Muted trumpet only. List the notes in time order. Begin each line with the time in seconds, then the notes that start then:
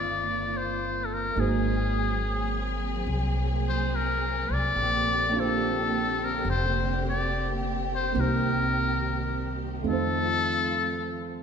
Already playing: D5
0.57 C5
1.06 A4
1.14 A#4
1.40 G#4
3.69 C5
3.96 A#4
4.53 D5
5.40 A4
6.25 A#4
6.50 C5
7.10 D5
7.95 C5
8.20 A#4
9.89 A4